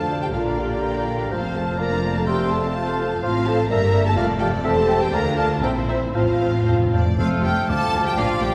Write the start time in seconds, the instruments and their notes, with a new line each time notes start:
Already playing: double bass section D2, cello section D2, bassoon D3, french horn section A4, clarinet C5, cor anglais F5, violin section A5, flute section A5
0.08 viola section F4 A4, violin section D5
0.20 viola section D4 F4, french horn section G4, violin section F5 G5
0.32 double bass section A#1, cello section A#2, viola section F4 A#4, french horn section F4, clarinet D5, violin section F5, flute section A#5
0.37 violin section D5
0.45 viola section D4 D5
0.49 violin section F5
0.58 viola section F4 A#4, french horn section G4, violin section D5 G5
0.69 viola section D4 D5, violin section F5
0.82 viola section F4 A#4, clarinet A#4, violin section D5, cor anglais F5
0.94 viola section D4 D5, violin section F5
1.06 viola section F4 A#4, clarinet A#4, violin section D5
1.19 viola section D4 D5, violin section F5
1.30 double bass section F1, cello section F2, bassoon F3, viola section A3 A4, french horn section F4, clarinet C5, cor anglais F5, violin section F5 A5
1.42 viola section C4 C5, violin section F5
1.55 viola section A3 A4, french horn section A4, violin section A5
1.67 viola section C4 C5, violin section F5
1.77 bassoon F3, viola section A#3 F4, french horn section A#4, clarinet D5, violin section D5 A#5, flute section A#5
1.90 viola section D4 A#4, violin section F5
2.02 viola section A#3 F4, violin section D5
2.13 viola section D4 A#4, french horn section A4, violin section F5 A5
2.25 timpani F2, bassoon G3, viola section A3 F4, french horn section G4, clarinet C5, cor anglais E5, violin section G5 A5, flute section C6
2.39 viola section C4 A4, violin section F5
2.50 viola section A3 F4, french horn section A4, violin section A5
2.63 viola section C4 A4, violin section F5
2.75 bassoon F3, viola section A3 F4, clarinet C5, cor anglais F5, violin section A5, flute section C6
2.87 viola section C4 A4, violin section F5
3.00 viola section A3 F4, violin section A5
3.11 viola section C4 A4, violin section F5
3.21 double bass section A1, cello section A2, bassoon F3, viola section C4 F4, french horn section F4, clarinet C5, violin section F5, cor anglais F5, flute section A5
3.46 bassoon F3, french horn section A4, clarinet C5, cor anglais F5, violin section A5, flute section A5
3.69 double bass section G1, cello section G2, bassoon G3, viola section A#3 G4, french horn section A#4, clarinet A#4, violin section E5 A#5, cor anglais E5, flute section A#5
3.93 bassoon G3, clarinet A#4, cor anglais E5, flute section A#5
4.04 french horn section A4, violin section A5
4.15 double bass section F1, cello section F2, timpani F2, bassoon A3, viola section A3 A4, french horn section F4, violin section D5 F5, clarinet D5, cor anglais F5, flute section A5
4.40 bassoon A3, french horn section G4, clarinet D5, cor anglais F5, violin section G5, flute section A5
4.63 double bass section E1, cello section E2, viola section C4 G4, bassoon C4, french horn section A4, violin section C5 A5, cor anglais E5, clarinet E5, flute section G5
4.88 bassoon C4, cor anglais E5, clarinet E5, flute section G5
5.01 french horn section G4, violin section G5
5.11 cello section D2, double bass section D2, bassoon A#3, viola section D4 F4, violin section A#4 A#5, french horn section A#4, clarinet D5, cor anglais F5, flute section A#5
5.35 bassoon A#3, french horn section A4, clarinet D5, cor anglais F5, violin section A5, flute section A#5
5.61 double bass section A#1, cello section A#2, viola section C4 E4, bassoon C4, french horn section G4, violin section C5 G5, clarinet C5, cor anglais E5, flute section A#5
5.87 bassoon C4, french horn section E4, clarinet C5, cor anglais E5, violin section E5, flute section A#5
6.13 double bass section A1, timpani F2, cello section A2, viola section C4 F4, bassoon C4, french horn section F4, violin section C5 F5, clarinet C5, cor anglais F5, flute section A5
6.22 timpani F2
6.29 timpani F2
6.37 timpani F2, cor anglais F5
6.41 bassoon C4, clarinet C5, flute section A5
6.46 timpani F2
6.53 timpani F2
6.62 timpani F2, violin section C5
6.66 timpani F2, bassoon C4, clarinet C5, cor anglais F5, flute section A5
6.76 timpani F2
6.85 timpani F2
6.92 timpani F2, bassoon C4, clarinet C5, violin section D5, cor anglais F5, flute section A5
7.01 timpani F2
7.08 timpani F2
7.17 double bass section F1, timpani F2, cello section F2, french horn section F3, viola section F3 A3, bassoon A3, violin section F4 F5, cor anglais A4, clarinet C5, flute section F6
7.42 double bass section F1, cello section F2, viola section F3 A3, french horn section G3, violin section G4 G5
7.68 double bass section D2, cello section D2, viola section F3 D4, bassoon F3, french horn section A3, violin section A4 A5, clarinet D5, cor anglais F5, flute section D6
7.92 double bass section D2, cello section D2, viola section F3 D4
8.05 french horn section G3, violin section G4 G5
8.17 double bass section A#1, cello section A#2, french horn section F3, viola section F3 D4, violin section F4 F5, cor anglais D5, clarinet D5, flute section D6
8.40 double bass section A#1, cello section A#2, viola section F3 D4, french horn section G3, violin section G4 G5